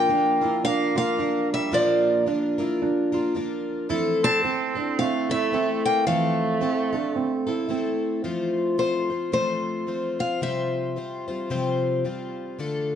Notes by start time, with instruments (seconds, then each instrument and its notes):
Already playing: twelve-string acoustic guitar F3, tenor saxophone A#3, steel-string acoustic guitar G5
0.09 twelve-string acoustic guitar A#3 D4 F4 A#4, felt piano D4
0.41 twelve-string acoustic guitar A#3 D4 F4 A#4, felt piano E4
0.64 tenor saxophone A#3, felt piano D4, steel-string acoustic guitar F5
0.95 twelve-string acoustic guitar A#3 D4 F4 A#4, tenor saxophone A#3, felt piano F4, steel-string acoustic guitar F5
1.18 twelve-string acoustic guitar A#3 D4 F4 A#4, felt piano D4
1.52 tenor saxophone G3, steel-string acoustic guitar E5
1.72 twelve-string acoustic guitar A#2 F3 A#3 D4 F4 A#4, tenor saxophone F3, felt piano F4, steel-string acoustic guitar D5
2.26 twelve-string acoustic guitar A#3 D4 F4 A#4, felt piano D4
2.58 twelve-string acoustic guitar A#3 D4 F4 A#4, felt piano E4
2.82 felt piano D4
3.12 twelve-string acoustic guitar A#3 D4 F4 A#4, felt piano F4
3.35 twelve-string acoustic guitar A#3 D4 F4 A#4, felt piano D4
3.89 twelve-string acoustic guitar F3 A3 C4 E4 A4, felt piano E4
4.24 tenor saxophone C4, steel-string acoustic guitar A5
4.43 twelve-string acoustic guitar A3 C4 E4 A4, felt piano C4
4.75 twelve-string acoustic guitar C4 E4 A4, felt piano D4
4.99 tenor saxophone A3, felt piano C4, steel-string acoustic guitar F5
5.30 tenor saxophone A3, twelve-string acoustic guitar C4 E4 A4, felt piano E4, steel-string acoustic guitar E5
5.52 twelve-string acoustic guitar A3 C4 E4 A4, felt piano C4
5.86 tenor saxophone A#3, steel-string acoustic guitar G5
6.07 felt piano E3, twelve-string acoustic guitar F3 A3 C4 A4, tenor saxophone A3, steel-string acoustic guitar F5
6.61 twelve-string acoustic guitar A3 C4 E4 A4, felt piano C4
6.93 twelve-string acoustic guitar C4 A4, felt piano D4
7.16 felt piano C4
7.47 twelve-string acoustic guitar C4 E4 A4, felt piano E4
7.69 twelve-string acoustic guitar A3 C4 E4 A4, felt piano C4
8.24 twelve-string acoustic guitar F3 A3 C4 F4 C5
8.78 twelve-string acoustic guitar A3 C4 F4 C5, steel-string acoustic guitar C5
9.10 twelve-string acoustic guitar C4 F4 C5
9.32 twelve-string acoustic guitar F3 A3 C4 F4 C5, steel-string acoustic guitar C5
9.87 twelve-string acoustic guitar A3 C4 F4 C5
10.19 twelve-string acoustic guitar C4 F4 C5, steel-string acoustic guitar F5
10.41 twelve-string acoustic guitar C3 F3 G3 C4 F4 C5, steel-string acoustic guitar E5
10.96 twelve-string acoustic guitar G3 C4 F4 C5
11.28 twelve-string acoustic guitar G3 C4 F4 C5
11.50 twelve-string acoustic guitar C3 F3 G3 C4 F4 C5
12.05 twelve-string acoustic guitar G3 C4 F4 C5
12.58 twelve-string acoustic guitar D3 A3 D4 F4 A4